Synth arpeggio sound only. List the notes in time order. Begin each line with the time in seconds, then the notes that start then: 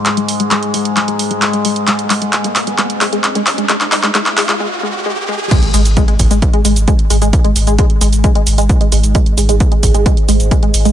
0.17 G#3
0.40 G#3
0.51 G#3
0.74 G#3
0.97 G#3
1.08 G#3
1.31 G#3
1.54 G#3
1.65 G#3
1.88 G#3
2.10 G#3
2.22 G#3
2.44 G#3
2.67 G#3
2.79 G#3
3.01 G#3
3.13 G#3
3.35 G#3
3.58 G#3
3.69 G#3
3.92 G#3
4.03 G#3
4.15 G#3
4.37 G#3
4.49 G#3
4.60 G#3
4.83 G#3
5.06 G#3
5.29 G#3
5.51 G#3
5.74 G#3
5.97 G#3
6.08 G#3
6.31 G#3
6.53 G#3
6.65 G#3
6.88 G#3
7.10 G#3
7.22 G#3
7.44 G#3
7.67 G#3
7.79 G#3
8.01 G#3
8.24 G#3
8.35 G#3
8.58 G#3
8.81 G#3
8.92 G#3
9.15 G#3
9.38 G#3
9.49 G#3
9.72 G#3
9.94 G#3
10.06 G#3
10.29 G#3
10.51 G#3
10.63 G#3
10.85 G#3